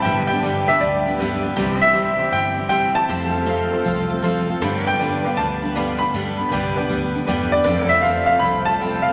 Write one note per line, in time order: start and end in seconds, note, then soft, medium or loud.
0.00 0.62 G1 loud
0.00 1.54 D3 medium
0.00 3.04 G3 medium
0.00 1.55 B3 medium
0.00 0.26 G5 medium
0.05 0.29 G2 medium
0.05 0.30 D3 medium
0.05 0.30 G3 medium
0.05 0.30 B3 medium
0.05 0.30 D4 medium
0.05 1.55 G4 medium
0.05 0.29 G4 medium
0.05 1.56 B4 medium
0.05 0.31 E5 medium
0.27 0.43 D4 medium
0.27 0.43 G4 medium
0.27 1.56 D5 medium
0.27 0.67 G5 medium
0.32 0.43 G3 medium
0.32 0.43 B3 soft
0.41 0.68 G2 medium
0.41 0.68 D3 medium
0.41 0.68 G3 medium
0.41 0.68 B3 medium
0.41 0.68 D4 medium
0.41 0.62 G4 medium
0.41 0.66 G4 medium
0.41 0.62 B4 medium
0.41 0.63 D5 medium
0.66 0.81 D4 soft
0.66 0.96 G4 medium
0.66 0.80 G4 medium
0.66 0.96 B4 medium
0.66 0.97 D5 medium
0.66 0.81 E5 medium
0.70 0.80 G3 soft
0.70 0.81 B3 soft
0.80 1.38 D2 medium
0.80 1.06 G3 medium
0.80 1.06 B3 medium
0.80 1.06 D4 medium
0.80 1.40 D5 medium
0.84 1.05 G4 medium
1.06 1.20 G3 soft
1.06 1.20 B3 soft
1.06 1.19 D4 medium
1.06 1.19 G4 medium
1.18 1.44 G2 medium
1.18 1.44 D3 medium
1.18 1.45 G3 medium
1.18 1.45 B3 medium
1.18 1.45 D4 medium
1.18 1.52 G4 medium
1.18 1.43 G4 medium
1.18 1.52 B4 medium
1.18 1.52 E5 medium
1.44 1.57 G3 medium
1.44 1.58 B3 medium
1.44 1.58 D4 medium
1.44 1.57 G4 medium
1.56 2.14 C2 loud
1.56 1.82 C3 medium
1.56 3.08 E3 medium
1.56 1.82 G3 medium
1.56 4.59 C4 medium
1.56 1.83 C4 loud
1.56 3.07 G4 medium
1.56 1.78 B4 medium
1.56 1.84 D5 medium
1.60 1.83 E4 loud
1.60 1.81 G4 loud
1.78 3.08 C5 medium
1.78 2.34 E5 loud
1.82 1.95 C4 soft
1.82 1.96 E4 soft
1.82 1.95 G4 medium
1.82 3.09 E5 medium
1.93 2.20 C3 medium
1.93 2.20 G3 medium
1.93 2.20 C4 medium
1.93 2.20 E4 medium
1.93 2.14 G4 medium
1.93 2.15 C5 medium
1.93 2.15 E5 medium
1.97 2.18 G4 medium
2.17 2.33 E4 soft
2.17 2.47 G4 medium
2.17 2.32 G4 soft
2.17 2.48 C5 medium
2.17 2.48 E5 medium
2.23 2.33 C4 soft
2.32 2.91 G1 loud
2.32 2.57 G3 medium
2.32 2.58 C4 medium
2.32 2.58 E4 medium
2.32 2.56 G4 medium
2.32 2.68 G5 loud
2.57 2.70 C4 soft
2.57 2.71 E4 medium
2.57 2.70 G4 medium
2.69 2.95 C3 medium
2.69 2.96 G3 medium
2.69 2.96 C4 medium
2.69 2.96 E4 medium
2.69 3.04 G4 medium
2.69 2.94 G4 medium
2.69 3.04 C5 medium
2.69 3.04 E5 medium
2.69 2.96 G5 loud
2.95 3.09 C4 soft
2.95 3.10 E4 soft
2.95 3.08 G4 medium
2.95 3.43 A5 loud
3.09 3.67 F2 medium
3.09 3.34 F3 medium
3.09 4.60 F3 medium
3.09 4.60 A3 medium
3.09 3.34 C4 medium
3.09 3.34 F4 medium
3.09 3.34 G4 medium
3.09 3.32 A4 medium
3.09 4.60 C5 medium
3.09 3.31 E5 medium
3.31 3.46 A4 medium
3.31 4.60 A4 medium
3.31 4.61 F5 medium
3.35 3.45 C4 soft
3.35 3.46 F4 soft
3.45 3.71 F3 medium
3.45 3.71 C4 medium
3.45 3.72 F4 loud
3.45 3.67 A4 medium
3.45 3.70 A4 medium
3.45 3.68 C5 medium
3.45 3.68 F5 loud
3.71 3.85 C4 soft
3.71 3.85 F4 medium
3.71 4.00 A4 medium
3.71 3.85 A4 medium
3.71 4.01 C5 medium
3.71 4.02 F5 medium
3.85 4.43 C2 medium
3.85 4.10 F3 medium
3.85 4.10 C4 medium
3.85 4.10 F4 medium
3.85 4.09 A4 medium
4.10 4.22 C4 medium
4.10 4.23 F4 medium
4.10 4.23 A4 medium
4.22 4.48 F3 medium
4.22 4.48 C4 medium
4.22 4.48 F4 loud
4.22 4.56 A4 medium
4.22 4.47 A4 loud
4.22 4.57 C5 medium
4.22 4.57 F5 loud
4.48 4.63 C4 soft
4.48 4.62 F4 medium
4.48 4.61 A4 medium
4.60 5.20 G2 medium
4.60 4.86 G2 medium
4.60 7.63 D3 medium
4.60 4.87 D3 medium
4.60 7.62 G3 medium
4.60 4.87 G3 medium
4.60 7.63 B3 medium
4.60 4.87 B3 medium
4.60 4.87 D4 loud
4.60 4.87 A4 medium
4.60 4.86 B4 medium
4.60 4.87 C5 medium
4.60 7.64 G5 medium
4.87 5.00 G3 soft
4.87 5.01 B3 soft
4.87 5.00 D4 soft
4.87 7.63 B4 medium
4.87 5.00 B4 soft
4.87 7.63 D5 medium
4.87 5.39 G5 loud
4.98 5.25 G2 medium
4.98 5.25 D3 medium
4.98 5.25 G3 medium
4.98 5.26 B3 medium
4.98 5.25 D4 loud
4.98 5.19 B4 medium
4.98 5.20 D5 medium
4.98 5.20 G5 medium
5.03 5.23 B4 medium
5.24 5.37 B3 soft
5.24 5.38 D4 soft
5.24 5.53 B4 medium
5.24 5.37 B4 medium
5.24 5.53 D5 medium
5.24 5.54 F5 medium
5.28 5.36 G3 soft
5.37 5.96 D2 medium
5.37 5.62 G3 medium
5.37 5.63 B3 medium
5.37 5.62 D4 medium
5.37 5.61 B4 medium
5.37 5.73 A5 medium
5.62 5.75 G3 medium
5.62 5.75 B3 soft
5.62 5.75 D4 medium
5.62 5.75 B4 medium
5.74 6.00 G2 medium
5.74 6.00 D3 medium
5.74 6.01 G3 medium
5.74 6.01 B3 medium
5.74 6.00 D4 medium
5.74 6.08 B4 medium
5.74 5.99 B4 medium
5.74 6.09 D5 medium
5.74 6.09 F5 medium
5.99 6.13 B3 soft
5.99 6.14 D4 medium
5.99 6.13 B4 soft
5.99 6.72 B5 loud
6.03 6.13 G3 soft
6.13 6.38 G2 medium
6.13 6.43 G2 medium
6.13 6.39 D3 medium
6.13 6.39 G3 medium
6.13 6.39 B3 medium
6.13 6.38 D4 medium
6.13 6.37 B4 medium
6.38 6.51 G3 soft
6.38 6.52 B3 medium
6.38 6.52 D4 soft
6.38 6.51 B4 medium
6.51 6.84 C2 medium
6.51 6.76 G2 medium
6.51 6.77 D3 medium
6.51 6.77 G3 medium
6.51 6.77 B3 medium
6.51 6.76 D4 loud
6.51 6.72 B4 medium
6.51 6.75 B4 medium
6.51 6.72 D5 medium
6.51 6.72 G5 loud
6.76 6.88 G3 soft
6.76 6.89 B3 medium
6.76 6.90 D4 medium
6.76 7.05 B4 medium
6.76 6.89 B4 medium
6.76 7.05 D5 medium
6.76 7.06 G5 medium
6.89 7.22 D2 loud
6.89 7.14 G3 medium
6.89 7.15 B3 medium
6.89 7.14 D4 medium
6.89 7.13 B4 medium
7.14 7.27 G3 medium
7.14 7.28 B3 medium
7.14 7.28 D4 medium
7.14 7.27 B4 medium
7.26 7.60 E2 medium
7.26 7.52 G2 medium
7.26 7.53 D3 medium
7.26 7.53 G3 medium
7.26 7.53 B3 loud
7.26 7.53 D4 loud
7.26 7.60 B4 loud
7.26 7.51 B4 loud
7.26 7.61 D5 medium
7.26 7.61 G5 loud
7.52 7.65 G3 soft
7.52 7.66 B3 medium
7.52 7.66 D4 medium
7.52 7.66 B4 medium
7.52 7.92 D5 medium
7.64 8.24 F2 medium
7.64 9.13 F3 medium
7.64 7.90 F3 medium
7.64 9.13 A3 medium
7.64 9.13 C4 medium
7.64 7.91 C4 medium
7.64 7.91 F4 medium
7.64 7.90 A4 loud
7.64 7.89 B4 medium
7.64 7.91 D5 medium
7.64 7.91 G5 medium
7.89 8.05 F4 medium
7.89 9.13 A4 medium
7.89 8.04 A4 medium
7.89 9.13 C5 medium
7.89 8.03 E5 loud
7.89 9.13 F5 medium
7.94 8.04 C4 soft
8.02 8.29 F3 medium
8.02 8.29 C4 medium
8.02 8.23 A4 medium
8.02 8.24 C5 medium
8.02 8.25 F5 medium
8.02 8.24 F5 medium
8.06 8.30 F4 medium
8.06 8.28 A4 medium
8.26 8.57 A4 medium
8.26 8.42 A4 soft
8.26 8.58 C5 medium
8.26 8.39 F5 medium
8.26 8.58 F5 medium
8.31 8.42 C4 soft
8.31 8.43 F4 soft
8.39 9.00 C2 medium
8.39 8.67 F3 medium
8.39 8.67 C4 medium
8.39 8.66 B5 loud
8.44 8.68 F4 medium
8.44 8.66 A4 medium
8.65 8.81 F4 medium
8.65 8.80 A4 medium
8.65 9.01 A5 loud
8.71 8.80 C4 soft
8.80 9.05 F3 medium
8.80 9.06 C4 medium
8.80 9.06 F4 medium
8.80 9.13 A4 medium
8.80 9.05 A4 loud
8.80 9.13 C5 medium
8.80 9.13 G5 medium
9.02 9.13 A4 medium
9.02 9.13 F5 medium
9.08 9.13 C4 soft
9.08 9.13 F4 medium